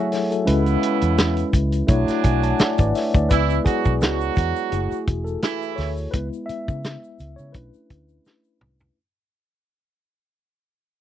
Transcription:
Already playing: F#3 A3 E4 G#4 C#5 E5 F#5 G#5
0.12 A4 C#5, snare, open hi-hat, shaker
0.31 F#4 A4, closed hi-hat, shaker
0.45 C#2 C#3 G#3 B3 C#4 E4 B4, closed hi-hat, shaker
0.66 closed hi-hat, shaker
0.83 closed hi-hat
1.01 E2, closed hi-hat, shaker
1.18 snare, closed hi-hat, shaker
1.37 closed hi-hat, shaker
1.53 C#2, kick, closed hi-hat, shaker
1.72 closed hi-hat, shaker
1.87 B1 A2 F#3 A3 D4 E4 C#5, kick, closed hi-hat, shaker
2.08 snare, closed hi-hat, shaker
2.23 B1 E5 G#5, kick, closed hi-hat, shaker
2.43 F#5 A5, closed hi-hat, shaker
2.59 D5 F#5, muted fingered electric bass stroke, snare, closed hi-hat, shaker
2.78 G#1 B4 D5, kick, closed hi-hat, shaker
2.95 C#5 E5, snare, open hi-hat, shaker
3.14 D2 B4 D5, kick, closed hi-hat, shaker
3.29 C#2 E3 G#3 B3 E4 B4, kick, closed hi-hat, shaker
3.50 shaker
3.65 F#3 F#4 G#4, kick, closed hi-hat, shaker
3.85 B1, kick, shaker
4.01 C#2 F#3 F#4, snare, closed hi-hat, shaker
4.21 shaker
4.36 E2, kick, closed hi-hat, shaker
4.56 shaker
4.70 F#1 A3 E4 F#4 G#4, closed hi-hat, shaker
4.92 shaker
5.07 E1, kick, closed hi-hat
5.24 A4, shaker
5.42 E3 E4, snare, closed hi-hat, shaker
5.62 shaker
5.76 D2 C#5, snare, open hi-hat
5.97 shaker
6.11 C#2 G#3 B3 E4 B4, kick, closed hi-hat, shaker
6.33 shaker
6.46 E5, muted fingered electric bass stroke, closed hi-hat, shaker
6.68 C#3, kick, shaker
6.84 snare, closed hi-hat, shaker
7.04 shaker
7.19 C#2, closed hi-hat, shaker
7.36 C#3 C#5, shaker
7.52 B1 A3 C#4 D4 E4 B4, kick, closed hi-hat, shaker
7.73 shaker
7.90 D2, kick, closed hi-hat
8.09 shaker
8.25 snare, shaker
8.44 shaker
8.61 C2, mid tom
8.79 floor tom, shaker

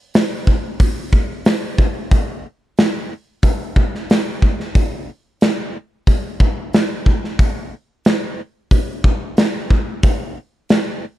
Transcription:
0.14 snare, open hi-hat
0.47 kick
0.80 kick, open hi-hat
1.13 kick
1.45 snare, open hi-hat
1.78 kick
2.11 kick, open hi-hat
2.78 snare, open hi-hat
3.43 kick, open hi-hat
3.76 kick
3.95 snare
4.10 snare, open hi-hat
4.42 kick
4.60 snare
4.75 kick, open hi-hat
5.41 snare, open hi-hat
6.07 kick, open hi-hat
6.40 kick
6.73 snare, open hi-hat
7.06 kick
7.24 snare
7.39 kick, open hi-hat
8.05 snare, open hi-hat
8.71 kick, open hi-hat
9.04 kick
9.37 snare, open hi-hat
9.70 kick
10.03 kick, open hi-hat
10.69 snare, open hi-hat

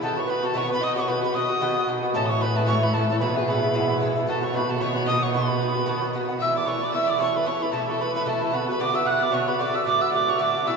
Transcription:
Already playing: B4 C#5
0.01 B2 D#3 B3 F#4 A4 A5
0.16 D#3 B3 F#4 C#5 C#6
0.27 B2 D#3 B3 B4 B5
0.31 F#4
0.43 D#3 B3 F#4 A4 A5
0.54 B2 D#3 B3 F#4 C#5
0.58 C#6
0.69 D#3 B3 F#4 B4
0.73 B5
0.80 B2 D#3 B3 F#4 D#5 D#6
0.95 D#3 B3 F#4 C#5 C#6
1.08 B2 D#3 B3 F#4 B4 B5
1.21 D#3 B3 F#4 B4 B5
1.34 B2 D#3 B3 F#4 D#5 D#6
1.50 D#3 B3 F#4
1.60 B2 D#3 B3 F#4
1.76 D#3 B3 F#4
1.87 B2 D#3 B3 F#4
2.03 D#3 B3 F#4
2.13 A2 E3 C#4 E4 A4 A5
2.26 E4 C#5 C#6 D#6
2.30 E3 C#4 C#5
2.40 A2 E3 C#4 E4 B4 B5
2.56 E3 C#4 E4 A4 A5
2.66 A2 E3 C#4 E4 C#5 C#6
2.83 E3 C#4 E4 B4 B5
2.93 A2 E3 C#4 E4 A4 A5
3.09 E3 C#4 E4 A4 A5
3.19 G#2 B2 E3 B3 E4 B4 B5
3.35 E3 B3 E4 G#4 G#5
3.46 G#2 E3 B3 B4 B5
3.50 E4
3.62 E3 B3 E4
3.73 G#2 E3 B3 E4
3.89 E3 B3 E4
4.00 G#2 E3 B3 E4
4.15 E3 B3 E4
4.27 B2 D#3 B3 F#4 A4 A5
4.41 D#3 B3 F#4 C#5 C#6
4.53 B2 D#3 B3 F#4 B4 B5
4.68 D#3 B3 F#4 A4 A5
4.78 B2 D#3 C#5 C#6
4.82 B3 F#4
4.93 B3 F#4 B4 B5
4.98 D#3
5.06 B2 D#3 B3 F#4 D#5 D#6
5.21 B3 F#4 C#5 C#6
5.26 D#3
5.32 B2 D#3 B3 F#4 B4 B5
5.49 D#3 B3 F#4
5.60 B2 D#3 B3 F#4
5.75 D#3 B3 F#4
5.86 B2 D#3 B3 F#4
6.02 D#3 B3 F#4
6.13 B2 D#3 B3 F#4
6.29 D#3 B3 F#4
6.39 B2 E3 A3 E4 E5 E6
6.54 A3 E4 D5 D6
6.58 E3
6.65 B2 E3 A3 E4 C#5 C#6
6.80 A3 E4 D5 D6
6.85 E3
6.91 B2 E3 A3 E5 E6
6.95 E4
7.07 A3 E4 D5 D6
7.11 E3
7.18 B2 E3 A3 E4 C#5 C#6
7.34 E3 A3 E4 B4 B5
7.45 B2 E3 A3 E4 C#5 C#6
7.61 E3 A3 E4 B4 B5
7.70 B2 E3 A3 A4 A5 B5
7.74 E4 A4
7.87 E3 A3 E4 A4 A5
7.99 B2 E3 A3 E4 B4 B5
8.15 E3 A3 E4 B4 B5
8.25 B2 E3 A3 E4 A4 A5
8.40 E3 A3 E4 A4
8.52 B2 D3 B3 F#4 B4 B5
8.67 B3 F#4 B4 B5
8.72 D3
8.79 B2 D3 B3 F#4 D5 D6
8.93 D3 B3 F#4 E5 E6
9.05 B2 D3 B3 F#4 F#5 F#6
9.20 D3 B3 F#4 D5 D6
9.31 B2 D3 B3 F#4 C#5 C#6
9.47 D3 B3 F#4 B4 B5
9.58 A2 D3 A3 F#4 D5 D6
9.74 D3 A3 F#4 E5 E6
9.84 A2 D3 A3 F#4 D5 D6
9.99 F#4 E5 E6
10.03 D3 A3
10.10 A2 D3 A3 D5 D6
10.15 F#4
10.26 D3 A3 F#4 C#5 C#6
10.39 A2 D3 A3 F#4 D5 D6
10.54 D3 A3 F#4
10.63 B2 E3 E5
10.68 A3 E4 E6

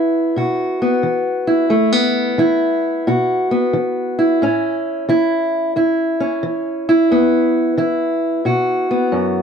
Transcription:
Already playing: E3 B3 E4
0.36 B2 F#4
0.82 B3
1.03 E3
1.47 E4
1.70 E2 A3
1.92 B3
2.38 E3 E4
3.07 B2 F#4
3.51 B3
3.73 E3
4.19 E4
4.42 A2 C#4
5.09 E3 E4
5.76 E2 E4
6.20 C#4
6.43 E3
6.89 E4
7.11 E2 B3
7.78 E3 E4
8.45 B2 F#4
8.91 B3
9.12 F#2

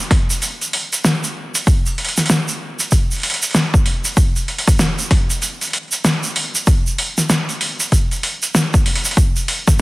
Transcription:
0.11 kick, snare, open hi-hat
0.30 open hi-hat, shaker
0.42 open hi-hat, shaker
0.61 open hi-hat, shaker
0.73 open hi-hat
0.93 open hi-hat, shaker
1.04 snare, open hi-hat, shaker
1.24 open hi-hat, shaker
1.55 open hi-hat, shaker
1.67 kick, open hi-hat, shaker
1.86 open hi-hat, shaker
1.98 open hi-hat
2.05 open hi-hat
2.09 open hi-hat
2.17 snare, open hi-hat, shaker
2.19 open hi-hat
2.26 snare, open hi-hat, shaker
2.30 open hi-hat
2.48 open hi-hat, shaker
2.80 open hi-hat, shaker
2.91 kick, open hi-hat, shaker
3.11 open hi-hat, shaker
3.13 open hi-hat
3.15 open hi-hat
3.16 open hi-hat
3.18 open hi-hat
3.20 open hi-hat
3.22 open hi-hat
3.23 open hi-hat
3.30 open hi-hat
3.34 open hi-hat
3.42 open hi-hat, shaker
3.46 open hi-hat
3.48 open hi-hat
3.49 open hi-hat
3.51 open hi-hat
3.53 snare, open hi-hat, shaker
3.55 open hi-hat
3.74 kick, shaker
3.86 open hi-hat
4.05 open hi-hat, shaker
4.17 kick, open hi-hat, shaker
4.36 open hi-hat, shaker
4.48 open hi-hat
4.58 open hi-hat
4.67 kick, open hi-hat, shaker
4.69 open hi-hat
4.79 snare, open hi-hat, shaker
4.99 open hi-hat, shaker
5.11 kick, snare, open hi-hat
5.30 open hi-hat, shaker
5.42 open hi-hat, shaker
5.61 open hi-hat, shaker
5.64 open hi-hat
5.67 open hi-hat
5.70 open hi-hat
5.73 open hi-hat
5.78 open hi-hat
5.83 open hi-hat
5.88 open hi-hat, shaker
5.93 open hi-hat
6.05 snare, open hi-hat, shaker
6.24 open hi-hat, shaker
6.36 open hi-hat
6.55 open hi-hat, shaker
6.67 kick, open hi-hat, shaker
6.87 shaker
6.98 open hi-hat
7.18 snare, open hi-hat, shaker
7.30 snare, open hi-hat, shaker
7.49 open hi-hat, shaker
7.61 open hi-hat
7.80 open hi-hat, shaker
7.92 kick, open hi-hat, shaker
8.11 open hi-hat, shaker
8.23 open hi-hat
8.43 open hi-hat, shaker
8.55 snare, open hi-hat, shaker
8.74 kick, open hi-hat, shaker
8.86 open hi-hat
8.95 open hi-hat
9.05 open hi-hat, shaker
9.11 open hi-hat
9.17 kick, shaker
9.36 open hi-hat, shaker
9.48 open hi-hat
9.68 kick, snare, open hi-hat, shaker

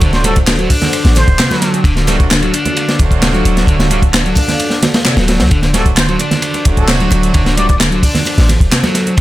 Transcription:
Already playing: D3 F#3 A3 C4 D4 F#4 A4 C5
0.01 D1 D3, kick, closed hi-hat, ride, muted conga
0.13 D3 C5, snare, closed hi-hat
0.24 F#3 G3 A3 C4 D4 F#4 A4, closed hi-hat, ride, high conga
0.36 kick, closed hi-hat, muted conga
0.47 D3, snare, clap, closed hi-hat, ride
0.59 F#3, closed hi-hat, muted conga
0.70 D4, kick, closed hi-hat, open hi-hat
0.82 snare, closed hi-hat, high conga, low conga
0.93 closed hi-hat, ride, muted conga
1.05 A1, snare, closed hi-hat
1.15 C5, snare, closed hi-hat, ride, muted conga, low conga
1.28 D1, kick, closed hi-hat
1.39 C3, snare, clap, closed hi-hat, ride
1.50 F#3, snare, closed hi-hat, muted conga, high conga
1.62 snare, closed hi-hat, ride
1.74 closed hi-hat, muted conga
1.84 D1 D3 F5, kick, closed hi-hat, ride
1.97 D3, snare, closed hi-hat
2.07 F#3 G3 A3 C4 D4 F#4, snare, closed hi-hat, ride, muted conga, high conga
2.20 kick, closed hi-hat
2.30 D3, snare, clap, closed hi-hat, ride, muted conga
2.42 F#3, closed hi-hat, ride
2.54 D4, closed hi-hat, ride
2.65 closed hi-hat, muted conga, high conga, low conga
2.77 closed hi-hat, ride
2.89 snare, closed hi-hat, muted conga
2.99 D1 F#3 A3 C4 D4 F#4, kick, closed hi-hat, ride
3.11 kick, closed hi-hat
3.22 C3, snare, clap, closed hi-hat, ride, muted conga
3.34 F#3, closed hi-hat, high conga
3.45 D1, closed hi-hat, ride, muted conga
3.57 snare, closed hi-hat
3.67 D1 D3, kick, closed hi-hat, ride
3.80 D3, snare, closed hi-hat, muted conga
3.90 F#3 G3 A3 C4 D4 F#4, closed hi-hat, ride, high conga
4.02 kick, closed hi-hat, muted conga
4.13 D3, snare, clap, closed hi-hat, ride
4.26 F#3, closed hi-hat
4.35 D4, kick, closed hi-hat, open hi-hat, muted conga
4.48 snare, closed hi-hat, high conga, low conga
4.59 closed hi-hat, ride, muted conga
4.70 snare, closed hi-hat
4.82 snare, closed hi-hat, ride, low conga
4.94 snare, closed hi-hat, ride, muted conga
5.05 C3, snare, clap, closed hi-hat, ride
5.17 D1 F#3, snare, closed hi-hat, ride, muted conga, high conga
5.28 snare, closed hi-hat, ride
5.40 D2, snare, closed hi-hat, ride
5.51 D1 D3 C5, kick, closed hi-hat, ride
5.62 D3, snare, closed hi-hat, muted conga
5.73 F#3 G3 A3 C4 D4 F#4 A4, snare, closed hi-hat, ride, high conga
5.86 kick, closed hi-hat
5.97 D3 C5, snare, clap, closed hi-hat, ride, muted conga
6.09 F#3 C5, closed hi-hat, ride
6.19 D4, closed hi-hat, ride, muted conga
6.31 snare, closed hi-hat, high conga, low conga
6.42 closed hi-hat, ride
6.54 closed hi-hat, muted conga
6.65 D1 F#3 A3 C4 D4 F#4, kick, closed hi-hat, ride
6.77 A4, kick, closed hi-hat, muted conga
6.88 C3, snare, clap, closed hi-hat, ride
7.00 F#3, closed hi-hat, high conga
7.11 D1, closed hi-hat, ride, muted conga
7.23 closed hi-hat
7.34 D1 D3, kick, closed hi-hat, ride, muted conga
7.46 D3, snare, closed hi-hat
7.57 F#3 G3 A3 C4 D4 F#4 D5, closed hi-hat, ride, high conga
7.69 D5, kick, closed hi-hat, muted conga
7.80 D3, snare, clap, closed hi-hat, ride
7.92 F#3, closed hi-hat, muted conga
8.03 D4, kick, closed hi-hat, open hi-hat
8.15 snare, closed hi-hat, high conga, low conga
8.25 closed hi-hat, ride, muted conga
8.38 A1, snare, closed hi-hat
8.48 snare, closed hi-hat, ride, muted conga, low conga
8.60 D1, kick, closed hi-hat
8.72 C3, snare, clap, closed hi-hat, ride
8.83 F#3, snare, closed hi-hat, muted conga, high conga
8.95 snare, closed hi-hat, ride
9.06 closed hi-hat, muted conga
9.17 D1 D3 D5, kick, closed hi-hat, ride

